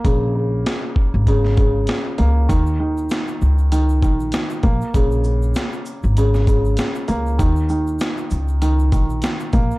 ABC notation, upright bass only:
X:1
M:4/4
L:1/16
Q:"Swing 16ths" 1/4=98
K:Bbphr
V:1 name="Upright bass" clef=bass
B,,,4 z3 A,,,4- A,,, z2 D,,2 | E,,4 z2 D,,4 B,,,2 z2 B,,, z | B,,,4 z3 A,,,4- A,,, z2 D,,2 | E,,4 z2 D,,4 B,,,2 z2 B,,, z |]